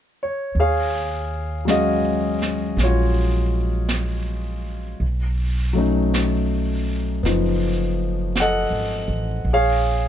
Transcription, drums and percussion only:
0.57 brush sweep
1.68 brush sweep, snare, hi-hat pedal
2.42 snare
2.78 brush sweep, snare
3.89 brush sweep, snare, hi-hat pedal
5.02 brush sweep
6.14 brush sweep, snare, hi-hat pedal
7.25 brush sweep, snare
8.36 brush sweep, snare, hi-hat pedal
9.46 brush sweep

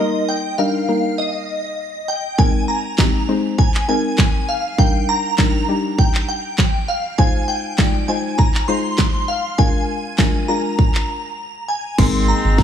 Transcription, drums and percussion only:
2.39 kick
2.98 kick, snare, clap
3.59 kick
3.75 clap
4.18 kick, snare, clap
4.78 kick
5.38 kick, snare, clap
5.98 kick
6.14 clap
6.58 kick, snare, clap
7.18 kick
7.78 kick, snare, clap
8.39 kick
8.55 clap
8.98 kick, snare, clap
9.59 kick
10.18 kick, snare, clap
10.79 kick
10.95 clap
11.98 kick, snare, crash
12.58 kick, snare

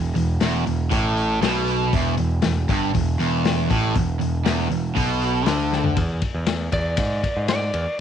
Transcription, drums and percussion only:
0.16 open hi-hat
0.41 snare, open hi-hat
0.67 open hi-hat
0.91 kick, open hi-hat
1.17 open hi-hat
1.43 snare, open hi-hat
1.68 open hi-hat
1.93 kick, open hi-hat
2.18 open hi-hat
2.42 snare, open hi-hat
2.69 kick, open hi-hat
2.95 kick, open hi-hat
3.20 open hi-hat
3.45 snare, open hi-hat
3.70 kick, open hi-hat
3.95 kick, open hi-hat
4.21 open hi-hat
4.46 snare, open hi-hat
4.59 snare
4.71 open hi-hat
4.97 kick, open hi-hat
5.22 open hi-hat
5.46 snare, open hi-hat
5.73 snare
5.84 floor tom
5.97 kick, ride
6.22 kick, ride
6.46 snare, ride
6.72 kick, ride
6.97 kick, ride
7.23 kick, ride
7.48 snare, ride
7.74 ride

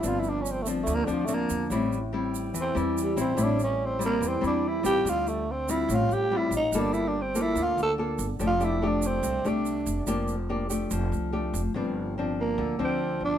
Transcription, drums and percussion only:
0.04 shaker
0.23 shaker
0.46 shaker
0.66 shaker
0.87 shaker
1.08 shaker
1.28 shaker
1.50 shaker
1.71 shaker
1.92 shaker
2.35 shaker
2.55 shaker
2.77 shaker
2.98 shaker
3.18 shaker
3.38 shaker
3.59 shaker
4.01 shaker
4.23 shaker
4.44 shaker
4.85 shaker
5.07 shaker
5.27 shaker
5.69 shaker
5.90 shaker
6.11 shaker
6.52 shaker
6.73 shaker
6.94 shaker
7.35 shaker
7.56 shaker
7.78 shaker
8.19 shaker
8.40 shaker
8.61 shaker
9.02 shaker
9.23 shaker
9.45 shaker
9.66 shaker
9.87 shaker
10.07 shaker
10.28 shaker
10.70 shaker
10.91 shaker
11.13 shaker
11.55 shaker

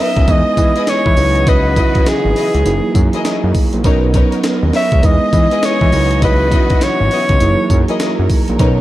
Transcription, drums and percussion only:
0.17 kick, closed hi-hat
0.28 kick, closed hi-hat, tambourine
0.57 kick, closed hi-hat, tambourine
0.76 closed hi-hat
0.87 snare, clap, closed hi-hat, tambourine
1.06 kick
1.17 open hi-hat, tambourine
1.35 closed hi-hat
1.47 kick, closed hi-hat, tambourine
1.76 kick, closed hi-hat, tambourine
1.95 kick, closed hi-hat
2.06 snare, clap, closed hi-hat, tambourine
2.36 open hi-hat
2.54 closed hi-hat
2.65 closed hi-hat, tambourine
2.95 kick, closed hi-hat, tambourine
3.13 closed hi-hat
3.25 snare, clap, closed hi-hat, tambourine
3.55 kick, open hi-hat, tambourine
3.73 closed hi-hat
3.84 kick, closed hi-hat, tambourine
4.14 kick, closed hi-hat, tambourine
4.32 closed hi-hat
4.44 snare, clap, closed hi-hat, tambourine
4.73 snare, open hi-hat
4.92 kick, closed hi-hat
5.03 kick, closed hi-hat, tambourine
5.33 kick, closed hi-hat, tambourine
5.51 closed hi-hat
5.63 snare, clap, closed hi-hat, tambourine
5.81 kick
5.92 open hi-hat, tambourine
6.11 closed hi-hat
6.22 kick, closed hi-hat, tambourine
6.52 kick, closed hi-hat, tambourine
6.70 kick, closed hi-hat
6.81 snare, clap, closed hi-hat, tambourine
7.11 open hi-hat
7.29 kick, closed hi-hat
7.40 closed hi-hat, tambourine
7.70 kick, closed hi-hat, tambourine
7.88 closed hi-hat
8.00 snare, clap, closed hi-hat, tambourine
8.30 kick, open hi-hat, tambourine
8.48 closed hi-hat
8.59 kick, closed hi-hat, tambourine

